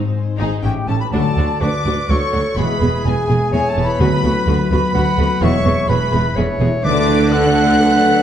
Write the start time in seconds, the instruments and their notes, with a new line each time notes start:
Already playing: harp G#2 C4, violin section C5
0.00 harp D#4
0.16 harp G#4
0.32 harp C5
0.38 double bass section G#1, cello section G#2, viola section D#4, violin section G#4
0.48 harp G#4
0.62 double bass section A1, cello section A2, harp A2, viola section C#4, violin section F#4 E5 G5, trumpet section G4, flute G5
0.81 harp A3
0.87 double bass section A1, cello section A2, viola section C#4, violin section G4 A5, trumpet section A4, flute A5
0.98 harp C#4 G4, trumpet section B4, flute B5, violin section B5
1.12 cello section D2, double bass section D2, harp D3, trombone section D3 F#3, french horn section A3 F#4, viola section D4 F#4, trumpet section A4, clarinet D5, flute A5, violin section A5
1.30 harp A3
1.37 double bass section D2, cello section D2, viola section D4 F#4
1.47 harp D4
1.60 cello section D2, double bass section D2, viola section D4 F#4, harp F#4, clarinet B4, trumpet section D5, flute D6, violin section D6
1.79 harp A4
1.85 double bass section D2, cello section D2, viola section D4 F#4
1.95 harp D5
2.09 cello section D2, double bass section D2, viola section D4 F#4, clarinet A4, trumpet section C#5, harp F#5, flute C#6, violin section C#6
2.26 harp A4
2.33 double bass section D2, cello section D2, viola section D4 F#4
2.42 harp F#4
2.57 double bass section E1, cello section E2, trombone section B2 E3, harp E3, french horn section G#3 G#4, viola section B3 G#4, clarinet G#4, trumpet section B4, violin section B5, flute B5
2.74 harp G#3
2.81 double bass section E1, cello section E2, viola section B3 G#4
2.91 harp B3
3.04 double bass section E1, cello section E2, viola section B3 G#4, harp E4, trumpet section G#4, violin section G#5, flute G#5
3.23 harp G#4
3.28 double bass section E1, cello section E2, viola section B3 G#4
3.38 harp B4
3.52 double bass section E1, cello section E2, viola section B3 G#4, trumpet section G#4, clarinet C#5, harp E5, violin section G#5, flute G#5
3.69 harp G#4, trumpet section A4, flute A5, violin section A5
3.76 double bass section E1, cello section E2, viola section B3 G#4
3.84 harp E4, trumpet section B4, flute B5, violin section B5
4.00 cello section D2, double bass section D2, trombone section B2 F#3, timpani D3, harp D3, viola section B3 F#4, french horn section B3 F#4, clarinet B4
4.18 harp F#3
4.24 cello section D2, double bass section D2, viola section B3 F#4
4.33 harp B3
4.47 cello section D2, double bass section D2, viola section B3 F#4, harp F#4
4.64 harp B3
4.71 cello section D2, double bass section D2, viola section B3 F#4, trumpet section B4, flute B5, violin section B5
4.94 cello section D2, double bass section D2, viola section B3 F#4, clarinet F#5
5.12 harp F#4
5.18 double bass section D2, cello section D2, viola section B3 F#4
5.28 harp B3
5.41 double bass section E1, cello section E2, trombone section B2 G#3, harp E3, french horn section B3 E4, viola section B3 G#4, trumpet section C#5, clarinet E5, flute C#6, violin section C#6
5.58 harp G#3
5.64 double bass section E1, cello section E2, viola section B3 G#4
5.74 harp B3
5.88 double bass section E1, cello section E2, viola section B3 G#4, harp E4, trumpet section B4, clarinet B4, violin section B5, flute B5
6.06 harp G#4
6.12 double bass section E1, cello section E2, viola section B3 G#4
6.21 harp B4
6.36 double bass section E1, cello section E2, viola section B3 G#4, clarinet C#5, harp E5
6.52 harp G#4
6.60 double bass section E1, cello section E2, viola section B3 G#4
6.68 harp E4
6.84 double bass section D2, harp D3, trombone section D3 A3, cello section D3, timpani D3, french horn section A3 D4, viola section D4 A4, clarinet B4, trumpet section D5, flute D6, violin section D6
6.99 harp A3
7.16 harp D4
7.32 trombone section D3 A3, french horn section A3 D4, clarinet A4, trumpet section F#5, flute F#6, violin section F#6
7.65 harp D5
7.80 trombone section F#3, clarinet B4, harp A5
8.12 harp D4